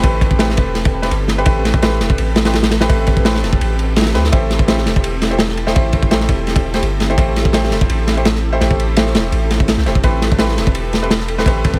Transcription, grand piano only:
0.04 0.38 A3 loud
0.04 0.38 C4 medium
0.04 0.38 G4 medium
0.04 0.38 B4 loud
0.39 0.91 A3 medium
0.39 0.91 C4 medium
0.39 0.91 G4 medium
0.39 0.91 B4 medium
1.02 1.10 A3 medium
1.02 1.10 C4 medium
1.02 1.10 G4 medium
1.02 1.10 B4 medium
1.38 1.45 A3 loud
1.38 1.45 C4 medium
1.38 1.45 G4 medium
1.38 1.45 B4 loud
1.46 1.80 A3 loud
1.46 1.80 C4 medium
1.46 1.80 G4 medium
1.46 1.80 B4 loud
1.82 2.34 A3 medium
1.82 2.34 C4 medium
1.82 2.34 G4 medium
1.82 2.34 B4 loud
2.45 2.53 A3 medium
2.45 2.53 C4 medium
2.45 2.53 G4 medium
2.45 2.53 B4 loud
2.81 2.88 A3 loud
2.81 2.88 C4 medium
2.81 2.88 G4 medium
2.81 2.88 B4 loud
2.89 3.23 A3 loud
2.89 3.23 C4 medium
2.89 3.23 G4 medium
2.89 3.23 B4 loud
3.25 3.77 A3 medium
3.25 3.77 C4 medium
3.25 3.77 G4 medium
3.25 3.77 B4 loud
4.14 4.23 A3 medium
4.14 4.23 C4 medium
4.14 4.23 G4 medium
4.14 4.23 B4 medium
4.32 4.66 A3 loud
4.32 4.66 E4 medium
4.32 4.66 G4 medium
4.32 4.66 C5 loud
4.68 5.20 A3 medium
4.68 5.20 E4 medium
4.68 5.20 G4 medium
4.68 5.20 C5 loud
5.31 5.38 A3 medium
5.31 5.38 E4 medium
5.31 5.38 G4 medium
5.31 5.38 C5 medium
5.67 5.74 A3 medium
5.67 5.74 E4 medium
5.67 5.74 G4 medium
5.67 5.74 C5 loud
5.75 6.09 A3 loud
5.75 6.09 E4 medium
5.75 6.09 G4 medium
5.75 6.09 C5 loud
6.11 6.63 A3 medium
6.11 6.63 E4 medium
6.11 6.63 G4 medium
6.11 6.63 C5 loud
6.74 6.81 A3 medium
6.74 6.81 E4 medium
6.74 6.81 G4 medium
6.74 6.81 C5 medium
7.10 7.17 A3 loud
7.10 7.17 E4 medium
7.10 7.17 G4 medium
7.10 7.17 C5 loud
7.18 7.52 A3 loud
7.18 7.52 E4 medium
7.18 7.52 G4 medium
7.18 7.52 C5 loud
7.54 8.06 A3 medium
7.54 8.06 E4 medium
7.54 8.06 G4 medium
7.54 8.06 C5 loud
8.17 8.24 A3 medium
8.17 8.24 E4 medium
8.17 8.24 G4 medium
8.17 8.24 C5 medium
8.52 8.59 A3 medium
8.52 8.59 E4 medium
8.52 8.59 G4 medium
8.52 8.59 C5 loud
8.61 8.95 A3 loud
8.61 8.95 E4 medium
8.61 8.95 G4 medium
8.61 8.95 C5 loud
8.97 9.48 A3 medium
8.97 9.48 E4 medium
8.97 9.48 G4 medium
8.97 9.48 C5 medium
9.86 9.94 A3 medium
9.86 9.94 E4 medium
9.86 9.94 G4 medium
9.86 9.94 C5 medium
10.04 10.38 A3 loud
10.04 10.38 C4 medium
10.04 10.38 G4 medium
10.04 10.38 B4 loud
10.39 10.91 A3 medium
10.39 10.91 C4 medium
10.39 10.91 G4 medium
10.39 10.91 B4 loud
11.02 11.10 A3 medium
11.02 11.10 C4 medium
11.02 11.10 G4 medium
11.02 11.10 B4 medium
11.38 11.45 A3 medium
11.38 11.45 C4 medium
11.38 11.45 G4 medium
11.38 11.45 B4 loud
11.47 11.79 A3 loud
11.47 11.79 C4 medium
11.47 11.79 G4 medium
11.47 11.79 B4 loud

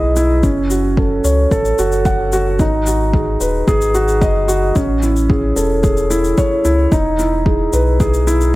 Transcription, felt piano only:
0.00 0.46 D#4 medium
0.00 0.17 E4 medium
0.00 0.45 G#4 medium
0.00 0.45 B4 medium
0.00 0.15 D#5 medium
0.17 0.42 E4 medium
0.43 0.69 C#4 medium
0.70 0.96 F#4 medium
0.97 1.23 A4 medium
1.24 1.50 C#5 medium
1.51 1.77 A4 loud
1.79 2.04 F#4 medium
2.06 2.31 F#5 medium
2.33 2.59 F#4 medium
2.60 2.85 D#4 medium
2.87 3.13 F#4 medium
3.14 3.40 G#4 medium
3.41 3.66 B4 medium
3.68 3.93 G#4 loud
3.94 4.20 F#4 loud
4.21 4.47 D#5 loud
4.48 4.74 F#4 medium
4.76 5.01 C#4 medium
5.03 5.29 E4 medium
5.29 5.55 G#4 medium
5.56 5.82 A4 medium
5.83 6.09 G#4 medium
6.10 6.36 E4 medium
6.38 6.64 C#5 loud
6.65 6.91 E4 medium
6.92 7.18 D#4 medium
7.19 7.45 E4 medium
7.46 7.72 G#4 medium
7.73 7.99 B4 medium
8.00 8.26 G#4 medium
8.27 8.53 E4 loud

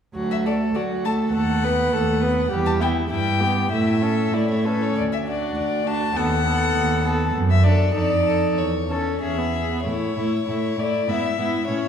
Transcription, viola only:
0.15 0.47 F#3 soft
0.46 0.77 A3 soft
0.76 1.07 F#3 soft
1.05 1.33 A3 soft
1.33 1.64 A3 soft
1.63 1.94 B3 soft
1.92 2.24 A3 soft
2.22 2.50 B3 soft
2.51 2.82 G3 soft
2.80 3.10 B3 soft
3.10 3.42 G3 soft
3.40 3.71 B3 soft
3.72 4.03 A3 soft
4.02 4.35 C#4 soft
4.33 4.67 A3 soft
4.65 4.96 C#4 soft
5.27 5.86 D4 soft
5.87 6.16 D4 soft
6.16 6.45 B3 soft
6.46 7.03 B3 soft
7.04 7.33 B3 soft
7.64 7.93 D4 soft
7.94 8.24 D#4 soft
8.25 8.57 D#4 soft
8.90 9.21 C#4 soft
9.21 9.40 C#4 soft
9.38 9.70 B3 soft
9.71 9.86 B3 soft
9.86 10.16 A3 soft
10.17 10.48 A3 soft
10.48 10.78 A3 soft
10.79 11.08 A3 soft
11.09 11.38 B3 soft
11.39 11.67 B3 soft
11.68 11.88 C#4 soft

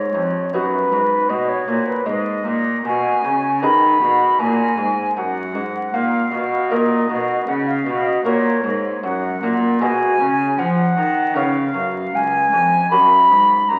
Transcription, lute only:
0.00 0.11 G#2 soft
0.14 0.49 F2 soft
0.54 0.88 F#2 soft
0.54 2.03 B3 soft
0.54 2.03 D#4 soft
0.54 2.03 F#4 soft
0.92 1.26 G#2 soft
1.29 1.64 B2 soft
1.68 2.02 A#2 soft
2.06 2.42 G#2 soft
2.06 2.44 G#3 soft
2.45 2.81 A#2 soft
2.85 3.20 B2 soft
3.25 3.59 C#3 soft
3.62 3.97 D#3 soft
3.62 4.35 B3 soft
3.62 4.36 D#4 soft
3.62 5.13 G#4 soft
4.01 4.36 B2 soft
4.39 4.74 A#2 soft
4.77 5.12 G#2 soft
5.17 5.51 F#2 soft
5.55 5.90 G#2 soft
5.94 6.28 A#2 soft
6.32 6.67 B2 soft
6.71 7.05 A#2 soft
6.71 7.05 A#3 soft
6.71 8.21 D#4 soft
6.71 8.21 A#4 soft
7.09 7.44 B2 soft
7.48 7.82 C#3 soft
7.86 8.21 B2 soft
8.25 8.60 A#2 soft
8.25 9.77 A#3 soft
8.25 9.77 F#4 soft
8.25 9.78 A#4 soft
8.64 8.99 G#2 soft
9.03 9.38 F#2 soft
9.43 9.78 A#2 medium
9.81 10.16 B2 soft
9.81 11.32 G#3 soft
9.81 11.32 F#4 soft
9.81 11.33 D#5 soft
10.20 10.55 C#3 medium
10.59 10.94 F3 medium
10.97 11.32 D#3 medium
11.35 11.71 C#3 medium
11.35 12.87 B3 soft
11.35 12.87 F4 soft
11.35 12.87 C#5 soft
11.74 12.09 F#2 soft
12.53 12.87 F2 medium
12.91 13.26 F#2 soft
12.91 13.26 A#3 soft
12.91 13.79 F#4 soft
12.91 13.79 C#5 soft
13.30 13.65 G#2 soft
13.70 13.79 F#2 soft

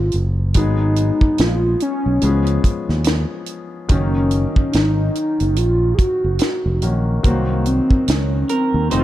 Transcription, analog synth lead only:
0.00 0.15 F4 loud
0.57 1.42 D#4 loud
1.40 1.82 F4 medium
1.82 2.61 C#4 medium
3.92 4.71 C#4 medium
4.72 5.58 D#4 medium
5.57 5.96 F4 medium
5.94 6.82 F#4 loud
5.94 5.99 G#4 medium
7.27 7.68 A#3 medium
7.67 8.11 C4 loud
8.10 8.51 C#4 medium
8.52 9.04 C4 loud

